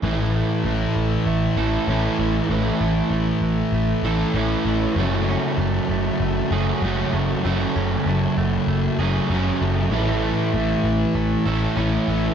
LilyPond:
<<
  \new Staff \with { instrumentName = "Clean electric guitar" } { \time 4/4 \key a \major \tempo 4 = 97 e8 a8 a8 e8 a8 a'8 cis'8 e8 | e8 a8 a8 e8 a8 a'8 cis'8 e8 | a8 cis'8 a8 a8 a8 gis'8 cis'8 a8 | a8 cis'8 a8 a8 a8 gis'8 cis'8 a8 |
e8 a8 a8 e8 a8 a'8 cis'8 e8 | }
  \new Staff \with { instrumentName = "Overdriven electric guitar" } { \time 4/4 \key a \major <a, e a cis' e'>2~ <a, e a cis' e'>8 <a, e a cis' e'>8 <a, e a cis' e'>4 | <a, e a cis' e'>2~ <a, e a cis' e'>8 <a, e a cis' e'>8 <a, e a cis' e'>4 | <fis a cis' fis'>2~ <fis a cis' fis'>8 <fis a cis' fis'>8 <fis a cis' fis'>4 | <fis a cis' fis'>2~ <fis a cis' fis'>8 <fis a cis' fis'>8 <fis a cis' fis'>4 |
<a, e a cis' e'>2~ <a, e a cis' e'>8 <a, e a cis' e'>8 <a, e a cis' e'>4 | }
  \new Staff \with { instrumentName = "Distorted electric guitar" } { \clef bass \time 4/4 \key a \major <a, e a>4 <a, e a>4. <e a>8 <a, e a>8 <e a>8 | <a, e a>4 <a, e a>4. <e a>8 <a, e a>8 <e a>8 | <fis, cis fis>4 <fis, cis fis>4. <cis fis>8 <fis, cis fis>8 <cis fis>8 | <fis, cis fis>4 <fis, cis fis>4. <cis fis>8 <fis, cis fis>8 <cis fis>8 |
<a, e a>4 <a, e a>4. <e a>8 <a, e a>8 <e a>8 | }
  \new Staff \with { instrumentName = "Picked electric bass" } { \clef bass \time 4/4 \key a \major a,,4 a,,8 a,,8 a,,8 a,,8 a,,8 a,,8 | a,,8 a,,8 a,,8 a,,8 a,,8 a,,8 a,,8 a,,8 | fis,,4 fis,,8 fis,,8 fis,,8 fis,,8 fis,,8 fis,,8 | fis,,8 fis,,8 fis,,8 fis,,8 fis,,8 fis,,8 fis,,8 fis,,8 |
a,,4 a,,8 a,,8 a,,8 a,,8 a,,8 a,,8 | }
>>